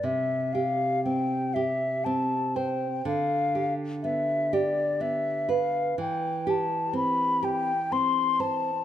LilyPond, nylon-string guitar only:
\new Staff \with { instrumentName = "Nylon-string guitar" } { \time 6/8 \key c \major \tempo 4. = 41 c8 g'8 c'8 g'8 c'8 c''8 | d8 g'8 b8 g'8 b8 b'8 | e8 g'8 c'8 g'8 c'8 c''8 | }